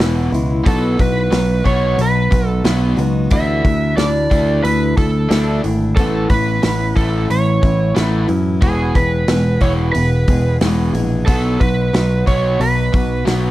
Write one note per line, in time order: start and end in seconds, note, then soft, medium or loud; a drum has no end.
0.00 0.29 E1 medium
0.00 0.30 E2 medium
0.00 0.30 B2 medium
0.00 0.31 E3 medium
0.00 0.33 E3 medium
0.00 0.33 G#3 medium
0.00 0.33 B3 medium
0.00 0.31 E4 medium
0.00 snare loud
0.00 open hi-hat medium
0.32 0.62 C#2 medium
0.32 0.62 E2 medium
0.32 0.62 B2 medium
0.32 0.66 E3 soft
0.32 0.67 G#3 medium
0.32 0.66 B3 soft
0.32 0.66 E4 medium
0.32 open hi-hat soft
0.64 0.95 B1 medium
0.64 0.96 B2 medium
0.64 0.99 B2 medium
0.64 0.96 F#3 medium
0.64 0.99 F#3 medium
0.64 0.96 B3 medium
0.64 0.99 B3 medium
0.64 0.98 D#4 medium
0.64 0.96 F#4 medium
0.64 1.01 A4 medium
0.64 kick loud
0.64 open hi-hat medium
0.97 1.28 B1 medium
0.97 1.28 B2 medium
0.97 1.28 F#3 medium
0.97 1.31 B3 soft
0.97 1.31 D#4 soft
0.97 1.32 F#4 soft
0.97 1.66 B4 medium
0.97 kick medium
0.97 open hi-hat soft
1.31 1.61 B1 medium
1.31 1.61 B2 medium
1.31 1.61 F#3 medium
1.31 2.31 F#3 soft
1.31 2.31 B3 medium
1.31 2.31 D#4 medium
1.31 2.30 F#4 medium
1.31 snare medium
1.31 open hi-hat medium
1.64 1.95 B1 medium
1.64 1.96 B2 medium
1.64 1.96 F#3 medium
1.64 1.97 B3 loud
1.64 2.00 C#5 medium
1.64 kick medium
1.64 open hi-hat soft
1.97 2.27 B1 medium
1.97 2.28 B2 medium
1.97 2.28 F#3 medium
1.97 open hi-hat medium
2.01 2.47 B4 medium
2.31 2.61 B1 medium
2.31 2.61 B2 medium
2.31 2.61 F#3 medium
2.31 2.64 B3 soft
2.31 2.65 D#4 soft
2.31 2.64 F#4 medium
2.31 kick medium
2.31 open hi-hat soft
2.47 2.62 A4 medium
2.64 2.94 B1 medium
2.64 2.96 B2 medium
2.64 2.98 F#3 medium
2.64 2.96 F#3 medium
2.64 2.98 B3 soft
2.64 2.96 B3 medium
2.64 2.97 D#4 medium
2.64 2.95 F#4 medium
2.64 snare loud
2.64 open hi-hat medium
2.97 3.27 C#2 medium
2.97 3.28 B2 medium
2.97 3.28 F#3 medium
2.97 3.31 B3 medium
2.97 3.31 D#4 soft
2.97 3.30 F#4 medium
2.97 open hi-hat soft
3.30 3.60 D2 medium
3.30 3.64 D3 medium
3.30 3.62 D3 medium
3.30 3.64 E3 medium
3.30 3.62 A3 loud
3.30 3.64 A3 medium
3.30 3.64 D4 medium
3.30 3.63 D4 medium
3.30 3.63 E4 medium
3.30 3.94 E5 loud
3.30 kick medium
3.30 open hi-hat medium
3.65 3.94 D2 medium
3.65 3.94 D3 medium
3.65 3.94 A3 medium
3.65 3.97 D4 soft
3.65 3.98 E4 medium
3.65 kick medium
3.65 open hi-hat soft
3.97 4.27 D2 medium
3.97 4.27 D3 medium
3.97 5.02 E3 soft
3.97 4.27 A3 medium
3.97 4.97 A3 medium
3.97 4.98 D4 medium
3.97 4.98 E4 medium
3.97 4.59 D5 loud
3.97 snare loud
3.97 open hi-hat medium
4.30 4.60 D2 medium
4.30 4.62 D3 medium
4.30 4.62 A3 medium
4.30 4.62 D4 medium
4.30 kick medium
4.30 open hi-hat soft
4.63 4.93 D2 medium
4.63 4.94 D3 medium
4.63 4.94 A3 medium
4.63 4.94 B4 medium
4.63 open hi-hat medium
4.97 5.26 D2 medium
4.97 5.27 D3 medium
4.97 5.27 A3 medium
4.97 5.31 A3 soft
4.97 5.31 D4 soft
4.97 5.31 E4 medium
4.97 5.60 A4 medium
4.97 kick medium
4.97 open hi-hat soft
5.29 5.60 D2 medium
5.29 5.61 D3 medium
5.29 5.64 E3 soft
5.29 5.61 A3 medium
5.29 5.64 A3 medium
5.29 5.61 D4 medium
5.29 snare loud
5.29 open hi-hat medium
5.33 5.64 D4 medium
5.33 5.63 E4 medium
5.63 5.93 G#1 medium
5.63 5.93 D3 medium
5.63 5.93 A3 medium
5.63 5.98 A3 soft
5.63 5.97 D4 soft
5.63 5.97 E4 soft
5.63 open hi-hat medium
5.96 6.26 A1 medium
5.96 6.28 A2 medium
5.96 6.31 A2 medium
5.96 6.28 E3 medium
5.96 6.31 E3 medium
5.96 6.28 A3 medium
5.96 6.31 B3 medium
5.96 6.30 C#4 medium
5.96 6.29 E4 medium
5.96 6.27 A4 medium
5.96 kick loud
5.96 open hi-hat medium
6.29 6.59 A1 medium
6.29 6.59 A2 medium
6.29 6.60 E3 medium
6.29 6.64 B3 soft
6.29 6.64 C#4 soft
6.29 6.63 E4 soft
6.29 6.96 B4 medium
6.29 kick medium
6.29 open hi-hat medium
6.62 6.92 A1 medium
6.62 6.92 A2 medium
6.62 6.93 E3 medium
6.62 7.63 E3 soft
6.62 7.65 B3 medium
6.62 7.64 C#4 medium
6.62 snare loud
6.62 open hi-hat medium
6.67 7.62 E4 medium
6.96 7.25 A1 medium
6.96 7.27 A2 medium
6.96 7.27 E3 medium
6.96 7.27 A3 medium
6.96 7.27 A4 medium
6.96 kick medium
6.96 open hi-hat soft
7.28 7.59 A1 medium
7.28 7.59 A2 medium
7.28 7.59 E3 medium
7.28 7.93 C#5 medium
7.28 open hi-hat medium
7.62 7.92 A1 medium
7.62 7.92 A2 medium
7.62 7.92 E3 medium
7.62 7.95 B3 soft
7.62 7.95 C#4 soft
7.62 7.96 E4 soft
7.62 kick medium
7.62 open hi-hat soft
7.95 8.25 A1 medium
7.95 8.26 A2 medium
7.95 8.27 E3 medium
7.95 8.29 E3 medium
7.95 8.27 A3 loud
7.95 8.28 B3 soft
7.95 8.28 C#4 soft
7.95 8.27 E4 soft
7.95 snare loud
7.95 open hi-hat medium
8.28 8.58 F#2 medium
8.28 8.58 A2 medium
8.28 8.58 E3 medium
8.28 8.62 B3 soft
8.28 8.62 C#4 soft
8.28 8.62 E4 medium
8.28 open hi-hat soft
8.61 8.91 E1 medium
8.61 8.93 E2 medium
8.61 8.95 E2 medium
8.61 8.93 B2 medium
8.61 8.96 B2 medium
8.61 8.93 E3 medium
8.61 8.95 E3 medium
8.61 8.96 G#3 medium
8.61 8.95 B3 medium
8.61 8.97 G#4 medium
8.61 8.94 G#4 medium
8.61 kick loud
8.61 open hi-hat medium
8.95 9.24 E1 medium
8.95 9.25 E2 medium
8.95 9.26 B2 medium
8.95 9.29 E3 soft
8.95 9.29 G#3 soft
8.95 9.29 B3 soft
8.95 9.28 G#4 soft
8.95 9.64 B4 medium
8.95 kick medium
8.95 open hi-hat soft
9.28 9.58 E1 medium
9.28 9.58 E2 medium
9.28 9.59 B2 medium
9.28 10.29 E3 medium
9.28 10.29 G#3 soft
9.28 10.28 B3 medium
9.28 10.27 G#4 medium
9.28 snare loud
9.28 open hi-hat medium
9.61 9.90 E1 medium
9.61 9.93 E2 medium
9.61 9.93 B2 medium
9.61 9.93 E3 medium
9.61 9.71 C#5 medium
9.61 kick medium
9.61 open hi-hat soft
9.92 10.24 E1 medium
9.92 10.25 E2 medium
9.92 10.25 B2 medium
9.92 10.56 B4 medium
9.92 open hi-hat medium
10.28 10.57 E1 medium
10.28 10.58 E2 medium
10.28 10.58 B2 medium
10.28 10.61 E3 soft
10.28 10.62 G#3 soft
10.28 10.62 B3 soft
10.28 10.61 G#4 medium
10.28 kick medium
10.28 open hi-hat soft
10.61 10.90 E1 medium
10.61 10.93 E2 medium
10.61 10.93 B2 medium
10.61 10.93 E3 medium
10.61 10.95 E3 medium
10.61 10.94 G#3 soft
10.61 10.94 B3 soft
10.61 10.93 G#4 soft
10.61 snare loud
10.61 open hi-hat medium
10.94 11.23 A#1 medium
10.94 11.24 E2 medium
10.94 11.24 B2 medium
10.94 11.28 E3 soft
10.94 11.28 G#3 soft
10.94 11.27 B3 medium
10.94 11.28 G#4 medium
10.94 open hi-hat soft
11.26 11.57 B1 medium
11.26 11.60 B2 medium
11.26 11.59 B2 medium
11.26 11.59 F#3 medium
11.26 11.61 F#3 medium
11.26 11.59 B3 medium
11.26 11.61 B3 medium
11.26 11.60 D#4 medium
11.26 11.58 F#4 medium
11.26 11.61 A4 medium
11.26 kick loud
11.26 open hi-hat medium
11.59 11.90 B1 medium
11.59 11.90 B2 medium
11.59 11.91 F#3 medium
11.59 11.93 B3 soft
11.59 11.93 D#4 soft
11.59 11.93 F#4 medium
11.59 12.27 B4 medium
11.59 kick medium
11.59 open hi-hat soft
11.93 12.23 B1 medium
11.93 12.24 B2 medium
11.93 12.93 F#3 soft
11.93 12.24 F#3 medium
11.93 12.94 B3 soft
11.93 12.93 D#4 medium
11.93 12.92 F#4 medium
11.93 snare loud
11.93 open hi-hat medium
12.26 12.56 B1 medium
12.26 12.58 B2 medium
12.26 12.58 F#3 medium
12.26 12.58 B3 medium
12.26 12.61 C#5 medium
12.26 kick medium
12.26 open hi-hat soft
12.60 12.89 B1 medium
12.60 12.90 B2 medium
12.60 12.90 F#3 medium
12.60 13.23 B4 medium
12.60 open hi-hat medium
12.93 13.23 B1 medium
12.93 13.23 B2 medium
12.93 13.23 F#3 medium
12.93 13.27 B3 soft
12.93 13.27 D#4 soft
12.93 13.26 F#4 medium
12.93 kick medium
12.93 open hi-hat soft
13.25 13.51 B1 medium
13.25 13.51 B2 medium
13.25 13.51 F#3 medium
13.25 13.51 B3 loud
13.25 13.51 B3 soft
13.25 13.51 D#4 medium
13.25 snare medium
13.25 open hi-hat medium
13.30 13.51 F#4 medium